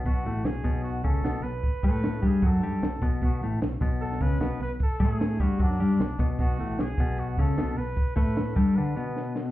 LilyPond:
<<
  \new Staff \with { instrumentName = "Trumpet" } { \time 4/4 \key b \minor \tempo 4 = 152 fis'4 gis'4 fis'8 a'4 b'8~ | b'8 b'4 gis'8 a'4. r8 | fis'8 r4. a'8 b'4 b'8 | a'8 gis'4 fis'8 d'4. r8 |
fis'4 gis'4 fis'8 a'4 b'8~ | b'8 b'4 a'8 b'4. r8 | }
  \new Staff \with { instrumentName = "Clean electric guitar" } { \clef bass \time 4/4 \key b \minor b,8 a,8 b,8 b,4 cis8 b,8 b,8 | r8 a4 g8 fis8 g8 b,8 b,8 | b,8 a,8 b,8 b,4 cis8 b,8 b,8 | r8 a4 g8 fis8 g8 b,8 b,8 |
b,8 a,8 b,8 b,4 cis8 b,8 b,8 | r8 a4 g8 d8 b,4. | }
  \new Staff \with { instrumentName = "Fingered electric bass" } { \clef bass \time 4/4 \key b \minor b,,8 a,,8 b,,8 b,,4 cis,8 b,,8 b,,8 | r8 a,4 g,8 fis,8 g,8 b,,8 b,,8 | b,,8 a,,8 b,,8 b,,4 cis,8 b,,8 b,,8 | r8 a,4 g,8 fis,8 g,8 b,,8 b,,8 |
b,,8 a,,8 b,,8 b,,4 cis,8 b,,8 b,,8 | r8 a,4 g,8 r2 | }
  \new DrumStaff \with { instrumentName = "Drums" } \drummode { \time 4/4 <hho bd>8 hho8 <hho sn>8 <hho bd>8 hho8 <hho bd>8 <hho sn>8 hho8 | <hho bd>8 <hho bd>8 <hho sn>8 <hho bd>8 <hho bd>8 hho8 <hho sn>8 <hho bd>8 | <hho bd>8 hho8 <hho sn>8 <hho bd>8 hho16 sn16 <hho bd>8 <hho sn>8 hho8 | <hho bd>8 <hho bd>8 <hho sn>8 <hho bd>8 <hho bd>16 sn16 hho8 <hho sn>8 <hho bd>8 |
<hho bd>8 hho8 <hho sn>8 <hho bd>8 hho8 <hho bd>8 <hho sn>8 hho8 | <hho bd>8 <hho bd>8 <hho sn>8 <hho bd>8 r4 sn8 sn8 | }
>>